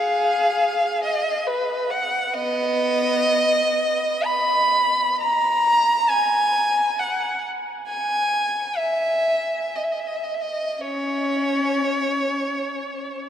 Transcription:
0.00 1.00 G#4 medium
0.00 1.01 F5 medium
1.04 1.46 D#5 medium
1.47 1.90 B4 medium
1.90 2.34 F#5 medium
2.34 3.68 B3 medium
2.34 4.26 D#5 loud
4.25 5.20 B5 medium
5.20 6.09 A#5 loud
6.10 6.98 G#5 medium
6.99 7.43 F#5 medium
7.88 8.74 G#5 medium
8.77 9.76 E5 medium
9.76 9.84 D#5 soft
9.84 9.93 E5 soft
9.92 10.01 D#5 soft
10.00 10.09 E5 soft
10.07 10.17 D#5 medium
10.16 10.26 E5 medium
10.24 10.34 D#5 soft
10.35 10.44 E5 soft
10.41 10.79 D#5 medium
10.81 12.47 C#4 medium
10.81 13.29 C#5 medium

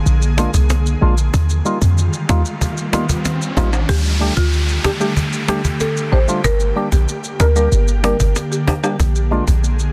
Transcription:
0.00 1.30 D3 medium
0.00 1.30 A#3 medium
0.00 1.31 G#4 medium
0.00 riser medium
0.06 0.48 A#1 loud
0.06 cajon slap soft
0.06 maracas medium
0.22 maracas medium
0.37 0.50 G#3 medium
0.37 0.51 A#3 medium
0.37 0.51 D4 medium
0.37 0.51 F4 loud
0.37 cajon slap loud
0.37 maracas medium
0.54 0.96 C2 medium
0.54 cajon bass medium
0.54 maracas medium
0.70 cajon slap loud
0.70 maracas medium
0.86 maracas medium
1.01 1.30 A#1 medium
1.01 1.14 G#3 loud
1.01 1.14 A#3 medium
1.01 1.15 D4 medium
1.01 1.15 F4 loud
1.18 maracas medium
1.34 1.62 D#2 loud
1.34 3.86 D#3 medium
1.34 3.86 G3 medium
1.34 3.86 F4 medium
1.34 cajon bass loud
1.34 maracas medium
1.49 maracas medium
1.65 1.78 G3 loud
1.65 1.78 A#3 medium
1.65 1.79 D#4 medium
1.65 1.79 F4 loud
1.65 maracas medium
1.82 2.09 F2 medium
1.82 cajon bass medium
1.82 maracas medium
1.98 cajon slap soft
1.98 maracas medium
2.13 maracas medium
2.29 2.43 D#2 medium
2.29 2.42 G3 medium
2.29 2.42 A#3 medium
2.29 2.42 D#4 medium
2.29 2.42 F4 loud
2.29 cajon slap loud
2.29 maracas medium
2.45 maracas medium
2.61 cajon bass medium
2.61 maracas medium
2.77 maracas medium
2.93 3.06 G3 medium
2.93 3.06 A#3 medium
2.93 3.06 D#4 medium
2.93 3.06 F4 loud
2.93 cajon slap loud
2.93 maracas medium
3.09 cajon bass medium
3.09 maracas medium
3.25 cajon slap loud
3.25 maracas medium
3.42 maracas medium
3.57 3.85 A1 loud
3.57 3.70 G3 medium
3.57 3.70 A#3 medium
3.57 3.70 D#4 medium
3.57 3.70 F4 loud
3.57 cajon bass medium
3.57 high timbale medium
3.57 maracas soft
3.73 high timbale medium
3.73 maracas medium
3.89 4.31 D2 loud
3.89 6.42 D3 medium
3.89 6.42 A3 medium
3.89 4.15 G4 loud
3.89 8.96 G4 medium
3.89 cajon bass loud
3.89 downlifter medium
3.89 maracas medium
4.05 maracas medium
4.20 4.33 G3 medium
4.20 4.34 A3 medium
4.20 4.34 D4 medium
4.20 4.34 G4 medium
4.20 cajon slap soft
4.37 4.79 D2 medium
4.37 4.50 F4 medium
4.37 cajon bass medium
4.37 maracas medium
4.53 cajon slap soft
4.53 maracas medium
4.69 maracas medium
4.84 4.91 D4 medium
4.84 4.98 G4 medium
4.84 4.91 G4 medium
4.84 cajon bass loud
4.84 cajon slap loud
4.84 maracas medium
5.00 5.13 G3 medium
5.00 5.13 A3 medium
5.00 5.14 D4 medium
5.00 5.14 G4 medium
5.00 maracas medium
5.17 cajon bass medium
5.17 maracas medium
5.33 maracas medium
5.48 5.61 G3 medium
5.48 5.61 A3 medium
5.48 5.61 D4 medium
5.48 5.62 G4 medium
5.48 cajon slap loud
5.64 cajon bass medium
5.64 maracas medium
5.80 5.93 A4 medium
5.80 cajon slap medium
5.80 maracas medium
5.97 maracas medium
6.12 6.26 A1 loud
6.12 6.18 D4 medium
6.12 6.19 G4 medium
6.12 6.25 C5 medium
6.12 cajon slap soft
6.28 6.41 G3 medium
6.28 6.41 A3 medium
6.28 6.41 D4 medium
6.28 6.41 F4 medium
6.28 maracas medium
6.44 6.72 G1 loud
6.44 9.93 D3 medium
6.44 8.97 A#3 medium
6.44 6.70 A#4 loud
6.44 cajon bass loud
6.44 maracas medium
6.60 maracas medium
6.76 6.89 G3 medium
6.76 6.89 A#3 medium
6.76 6.89 D4 medium
6.76 6.89 G4 medium
6.76 cajon slap soft
6.92 7.06 A#1 medium
6.92 7.05 G4 medium
6.92 cajon bass medium
6.92 maracas medium
7.08 cajon slap soft
7.08 maracas medium
7.24 maracas medium
7.40 7.68 D2 medium
7.40 7.46 D4 medium
7.40 7.53 A#4 medium
7.40 7.47 A#4 medium
7.40 cajon slap loud
7.40 maracas medium
7.55 7.68 G3 medium
7.55 7.69 A#3 medium
7.55 7.69 D4 medium
7.55 7.69 G4 medium
7.55 7.69 A#4 medium
7.55 maracas medium
7.72 8.14 G1 loud
7.72 cajon slap soft
7.72 maracas medium
7.88 maracas medium
8.03 8.16 G3 medium
8.03 8.17 A#3 medium
8.03 8.17 D4 medium
8.03 8.17 G4 medium
8.03 8.17 A#4 medium
8.03 cajon slap loud
8.20 8.34 G1 loud
8.20 cajon bass medium
8.20 maracas medium
8.35 cajon slap medium
8.35 maracas medium
8.52 8.65 G4 medium
8.52 maracas medium
8.67 8.74 D4 medium
8.67 8.74 G4 medium
8.67 cajon bass medium
8.67 high timbale medium
8.83 8.96 G3 medium
8.83 8.96 A#3 medium
8.83 8.97 D4 medium
8.83 8.97 G4 medium
8.83 high timbale medium
8.83 maracas medium
9.00 9.41 A#1 loud
9.00 9.93 A#3 medium
9.00 9.93 G#4 medium
9.00 cajon bass loud
9.00 maracas medium
9.15 maracas medium
9.31 9.44 G#3 medium
9.31 9.44 A#3 medium
9.31 9.44 D4 medium
9.31 9.45 F4 loud
9.31 cajon slap soft
9.48 9.89 A#1 medium
9.48 cajon bass medium
9.48 maracas medium
9.64 cajon slap soft
9.64 maracas medium
9.79 maracas medium

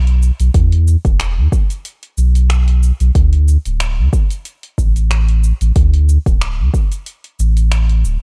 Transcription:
0.00 0.31 B1 medium
0.07 open hi-hat soft
0.23 cabasa medium
0.40 0.50 B1 loud
0.40 open hi-hat soft
0.40 cabasa soft
0.54 0.96 E2 medium
0.54 kick loud
0.54 open hi-hat medium
0.54 cabasa soft
0.72 open hi-hat soft
0.88 cabasa medium
1.05 1.39 E1 medium
1.05 kick loud
1.05 open hi-hat soft
1.05 cabasa soft
1.20 finger snap loud
1.20 open hi-hat medium
1.20 cabasa soft
1.37 1.48 E2 medium
1.52 kick loud
1.52 cabasa medium
1.70 open hi-hat soft
1.70 cabasa soft
1.85 open hi-hat medium
1.85 cabasa soft
2.03 open hi-hat soft
2.17 2.92 B1 medium
2.17 cabasa medium
2.35 open hi-hat soft
2.35 cabasa soft
2.50 finger snap loud
2.50 open hi-hat medium
2.50 cabasa soft
2.68 open hi-hat soft
2.83 cabasa medium
3.00 3.11 B1 loud
3.00 open hi-hat soft
3.00 cabasa soft
3.15 3.57 D2 loud
3.15 kick loud
3.15 open hi-hat medium
3.15 cabasa soft
3.33 open hi-hat soft
3.48 cabasa medium
3.65 3.99 D1 medium
3.65 open hi-hat soft
3.65 cabasa soft
3.80 finger snap loud
3.80 open hi-hat medium
3.80 cabasa soft
3.98 4.08 D2 medium
4.13 kick loud
4.13 cabasa medium
4.30 open hi-hat soft
4.30 cabasa soft
4.45 open hi-hat medium
4.45 cabasa soft
4.63 open hi-hat soft
4.78 5.53 A1 medium
4.78 kick medium
4.78 cabasa medium
4.96 open hi-hat soft
4.96 cabasa soft
5.11 finger snap loud
5.11 open hi-hat medium
5.11 cabasa soft
5.28 open hi-hat soft
5.44 cabasa medium
5.61 5.71 A1 loud
5.61 open hi-hat soft
5.61 cabasa soft
5.76 6.18 D2 loud
5.76 kick loud
5.76 open hi-hat medium
5.76 cabasa soft
5.94 open hi-hat soft
6.09 cabasa medium
6.26 6.61 D1 medium
6.26 kick loud
6.26 open hi-hat soft
6.26 cabasa soft
6.41 finger snap loud
6.41 open hi-hat medium
6.41 cabasa soft
6.59 6.69 D2 medium
6.74 kick loud
6.74 cabasa medium
6.92 open hi-hat soft
6.92 cabasa soft
7.06 open hi-hat medium
7.06 cabasa soft
7.24 open hi-hat soft
7.39 8.04 A1 medium
7.39 cabasa medium
7.57 open hi-hat soft
7.57 cabasa soft
7.72 finger snap medium
7.72 open hi-hat medium
7.72 cabasa soft
7.89 open hi-hat soft
8.04 8.17 D1 loud
8.04 cabasa medium

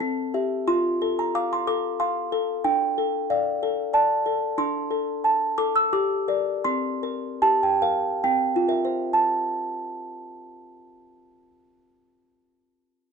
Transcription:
0.00 0.66 C4 medium
0.00 0.30 C6 medium
0.34 0.64 G4 soft
0.34 0.64 E5 soft
0.67 2.61 F4 medium
0.67 1.16 C6 medium
1.02 1.54 A4 soft
1.19 1.35 A#5 medium
1.35 1.87 F5 soft
1.35 1.51 D6 medium
1.53 1.68 C6 medium
1.67 2.19 A4 soft
1.67 1.99 D6 medium
2.00 2.52 F5 soft
2.00 2.62 C6 medium
2.32 2.65 A4 soft
2.64 4.55 D4 medium
2.64 3.27 G5 medium
2.98 3.49 A4 soft
3.30 3.81 D5 soft
3.30 3.92 F5 medium
3.63 4.14 A4 soft
3.93 4.45 D5 soft
3.93 4.56 A5 medium
4.26 4.58 A4 soft
4.58 5.89 D4 medium
4.58 5.54 C6 loud
4.91 5.44 A4 soft
5.24 5.79 A5 soft
5.58 5.93 A4 soft
5.58 5.75 D6 medium
5.76 5.93 E6 medium
5.93 6.63 G4 medium
5.93 6.62 D6 loud
6.28 6.61 A#4 soft
6.28 6.61 D5 soft
6.64 8.20 C4 medium
6.64 7.39 C6 loud
7.03 7.66 A#4 soft
7.42 8.07 G4 medium
7.42 7.62 A5 loud
7.63 7.83 G5 medium
7.82 8.24 A#4 soft
7.82 8.22 F5 medium
8.24 9.11 C4 medium
8.24 9.10 G5 medium
8.56 11.68 F4 soft
8.68 9.10 A#4 soft
8.68 9.10 E5 soft
8.85 11.97 C5 soft
9.13 12.25 A5 medium

